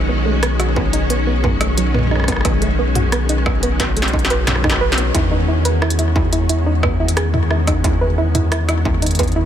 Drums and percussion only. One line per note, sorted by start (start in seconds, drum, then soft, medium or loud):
0.43 cross-stick loud
0.43 closed hi-hat medium
0.60 cross-stick medium
0.60 closed hi-hat soft
0.76 kick loud
0.93 closed hi-hat soft
1.10 closed hi-hat medium
1.44 kick medium
1.44 mid tom medium
1.61 cross-stick medium
1.61 closed hi-hat medium
1.78 closed hi-hat medium
1.94 mid tom medium
1.99 mid tom medium
2.03 mid tom medium
2.07 mid tom medium
2.11 cross-stick soft
2.11 mid tom soft
2.15 cross-stick soft
2.15 mid tom soft
2.20 cross-stick soft
2.20 mid tom soft
2.24 cross-stick soft
2.24 mid tom soft
2.28 kick medium
2.28 cross-stick soft
2.28 closed hi-hat medium
2.32 cross-stick soft
2.36 cross-stick soft
2.41 cross-stick medium
2.45 kick loud
2.45 cross-stick medium
2.45 closed hi-hat medium
2.62 closed hi-hat soft
2.95 closed hi-hat medium
2.95 mid tom medium
3.12 cross-stick loud
3.12 closed hi-hat medium
3.29 closed hi-hat soft
3.46 kick loud
3.46 cross-stick medium
3.63 closed hi-hat medium
3.80 kick medium
3.80 snare medium
3.80 closed hi-hat medium
3.97 closed hi-hat soft
4.02 snare medium
4.08 closed hi-hat soft
4.13 kick medium
4.19 closed hi-hat soft
4.25 snare medium
4.30 closed hi-hat medium
4.47 cross-stick soft
4.47 snare medium
4.47 closed hi-hat medium
4.47 mid tom medium
4.56 cross-stick medium
4.64 kick loud
4.64 cross-stick medium
4.64 mid tom medium
4.70 cross-stick medium
4.70 snare medium
4.92 snare loud
4.98 closed hi-hat medium
5.15 kick loud
5.15 closed hi-hat medium
5.65 closed hi-hat medium
5.82 cross-stick loud
5.90 closed hi-hat medium
5.99 closed hi-hat soft
6.16 kick loud
6.33 closed hi-hat medium
6.49 closed hi-hat medium
6.83 kick medium
6.83 cross-stick medium
6.83 mid tom medium
7.08 closed hi-hat medium
7.17 cross-stick loud
7.17 closed hi-hat medium
7.34 mid tom medium
7.51 cross-stick medium
7.67 kick medium
7.67 cross-stick medium
7.67 closed hi-hat medium
7.84 kick loud
7.84 closed hi-hat medium
8.35 closed hi-hat medium
8.35 mid tom medium
8.52 cross-stick loud
8.52 closed hi-hat medium
8.69 cross-stick medium
8.69 closed hi-hat soft
8.85 kick loud
9.02 closed hi-hat medium
9.06 closed hi-hat soft
9.11 closed hi-hat soft
9.15 closed hi-hat soft
9.19 kick medium
9.19 closed hi-hat medium
9.23 closed hi-hat soft
9.28 closed hi-hat soft
9.32 closed hi-hat soft